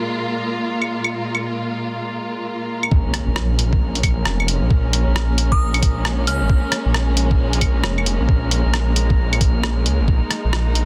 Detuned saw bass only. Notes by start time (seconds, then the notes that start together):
2.91 A#1
3.28 A#1
3.37 A#1
4.26 F1
4.62 A#1
5.07 A#1
5.16 A#1
5.82 A#1
6.27 C#2
6.41 G#1
6.49 A#1
6.86 A#1
6.94 A#1
7.84 F1
8.20 A#1
8.66 A#1
8.74 A#1
9.86 C#2
10.00 G#1
10.08 A#1
10.45 A#1
10.53 A#1